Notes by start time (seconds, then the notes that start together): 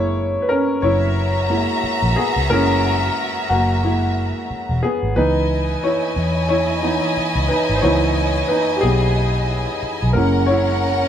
Already playing: F#1 G#3 A#3 E4 C#5
0.42 B4
0.49 C#4 A#4
0.82 F#1 E4 F#4 C#5 E5 A#5
1.50 G#3 A#3 E4
1.84 muted fingered electric bass stroke
2.02 A#1
2.16 B3 G#4
2.36 C#2
2.50 F#1 G#3 A#3 C#4 E4 A#4
3.49 F#1 A#3 F#4
3.84 G#3 A#3 E4
4.51 muted fingered electric bass stroke
4.69 E1
4.83 B3 G#4
5.03 G#1
5.16 C#2 E3 B3 D#4 E4 B4 D#5 G#5
5.83 E4 C#5
6.16 E2
6.49 E4 C#5
6.83 E3 B3 D#4
7.17 muted fingered electric bass stroke
7.35 C#2
7.48 D#4 B4
7.69 G#1
7.75 C5
7.81 C#2 E3 B3 D#4 E4 C#5
8.48 D#4 B4
8.76 G4
8.81 B1 B3 G#4
9.83 muted fingered electric bass stroke
10.03 B1
10.13 F#1 G#3 A#3 C#4 E4 A#4 F#5
10.46 E4 C#5